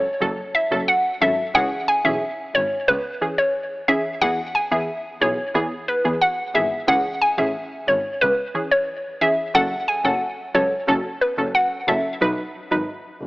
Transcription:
Already playing: synth pluck C#5
0.21 double bass F#1, synth stab F#3 C#4 A4
0.55 synth pluck E5
0.71 double bass F#1, synth stab F#3 C#4 A4
0.88 synth pluck F#5
1.21 double bass G#1, synth stab F#3 C#4 A4, synth pluck E5
1.54 double bass C#2, synth stab E3 C#4 G#4, synth pluck F#5
1.88 synth pluck G#5
2.04 double bass B1, synth stab E3 C#4 G#4, synth pluck E5
2.55 double bass G#1, synth pluck C#5
2.88 double bass C#2, synth pluck B4
3.21 synth stab E3 C#4 G#4
3.38 synth pluck C#5
3.88 synth stab E3 C#4 G#4, synth pluck E5
4.21 double bass E2, synth stab E3 B3 G#4, synth pluck F#5
4.55 synth pluck G#5
4.71 double bass E2, synth stab E3 B3 G#4, synth pluck E5
5.21 double bass B1, synth stab E3 B3 G#4, synth pluck C#5
5.54 double bass E2, synth stab E3 B3 G#4
5.88 synth pluck B4
6.04 double bass E2, synth stab E3 B3 G#4
6.21 synth pluck F#5
6.54 double bass G#1, synth stab E3 B3 G#4, synth pluck E5
6.88 double bass C#2, synth stab E3 C#4 G#4, synth pluck F#5
7.21 synth pluck G#5
7.38 double bass A1, synth stab E3 C#4 G#4, synth pluck E5
7.88 double bass G#1, synth pluck C#5
8.21 double bass C#2, synth pluck B4
8.54 synth stab E3 C#4 G#4
8.71 synth pluck C#5
9.21 synth stab E3 C#4 G#4, synth pluck E5
9.54 double bass F#1, synth stab F#3 C#4 A4, synth pluck F#5
9.88 synth pluck G#5
10.04 double bass F#1, synth stab F#3 C#4 A4, synth pluck F#5
10.54 double bass C#2, synth stab F#3 C#4 A4, synth pluck C#5
10.88 double bass F#1, synth stab F#3 C#4 A4
11.21 synth pluck B4
11.38 double bass F#1, synth stab F#3 C#4 A4
11.55 synth pluck F#5
11.88 double bass F#1, synth stab F#3 C#4 A4, synth pluck E5
12.21 double bass B1, synth stab F#3 D#4 B4
12.71 double bass G#1, synth stab F#3 D#4 B4
13.21 double bass F#1

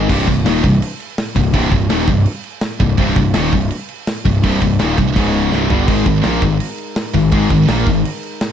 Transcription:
0.09 picked electric bass C1, distorted electric guitar C2 G2 C3, kick, crash
0.27 picked electric bass C1, distorted electric guitar C2 G2, kick, crash
0.45 picked electric bass D#1, distorted electric guitar D#2 A#2 D#3, snare, crash
0.64 picked electric bass C1, distorted electric guitar C2 G2, kick, crash
0.82 crash
1.00 crash
1.18 snare, crash
1.35 picked electric bass C1, distorted electric guitar C2 G2, kick, crash
1.53 picked electric bass C1, distorted electric guitar C2 G2 C3, kick, crash
1.71 picked electric bass C1, distorted electric guitar C2 G2, kick, crash
1.89 picked electric bass D#1, distorted electric guitar D#2 A#2 D#3, snare, crash
2.07 picked electric bass C1, distorted electric guitar C2 G2, kick, crash
2.26 crash
2.44 crash
2.61 snare, crash
2.80 picked electric bass C1, distorted electric guitar C2 G2, kick, crash
2.98 picked electric bass C1, distorted electric guitar C2 G2 C3, kick, crash
3.16 picked electric bass C1, distorted electric guitar C2 G2, kick, crash
3.34 picked electric bass D#1, distorted electric guitar D#2 A#2 D#3, snare, crash
3.52 picked electric bass C1, distorted electric guitar C2 G2, kick, crash
3.71 crash
3.89 crash
4.07 snare, crash
4.25 picked electric bass C1, distorted electric guitar C2 G2, kick, crash
4.43 picked electric bass C1, distorted electric guitar C2 G2 C3, kick, crash
4.62 picked electric bass C1, distorted electric guitar C2 G2, kick, crash
4.79 picked electric bass D#1, distorted electric guitar D#2 A#2 D#3, snare, crash
4.98 picked electric bass C1, distorted electric guitar C2 G2, kick, crash
5.16 picked electric bass C#1, distorted electric guitar C#2 G#2 C#3, kick, crash
5.34 crash
5.52 picked electric bass C1, distorted electric guitar C2 G2 C3, snare
5.70 picked electric bass G1, distorted electric guitar G2 D3 G3, floor tom
5.88 picked electric bass G#1, distorted electric guitar G#2 D#3 G#3, pipe organ G#3 D#4 A#4, kick, crash
6.06 picked electric bass G#1, distorted electric guitar G#2 D#3, kick, crash
6.24 picked electric bass A#1, distorted electric guitar A#2 F3 A#3, snare, crash
6.42 picked electric bass G#1, distorted electric guitar G#2 D#3, kick, crash
6.60 crash
6.78 crash
6.96 snare, crash
7.14 picked electric bass G#1, distorted electric guitar G#2 D#3, kick, crash
7.32 picked electric bass G#1, distorted electric guitar G#2 D#3 G#3, kick, crash
7.50 picked electric bass G#1, distorted electric guitar G#2 D#3, kick, crash
7.68 picked electric bass A#1, distorted electric guitar A#2 F3 A#3, snare, crash
7.87 picked electric bass G#1, distorted electric guitar G#2 D#3, kick, crash
8.05 crash
8.23 crash
8.41 snare, crash

